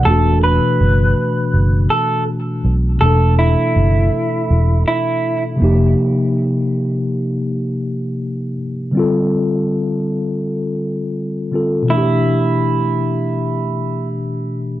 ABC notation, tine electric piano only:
X:1
M:4/4
L:1/8
Q:"Swing 16ths" 1/4=81
K:Em
V:1 name="Tine electric piano"
[B,,E,A,DF]8 | [B,,E,A,DA]6- [B,,E,A,DA] [C,=F,_B,_EG]- | [C,=F,_B,_EG]6- [C,F,B,EG] z | [D,G,C=FA]6- [D,G,CFA] [D,G,CFA] |
[B,,E,A,DG]8 |]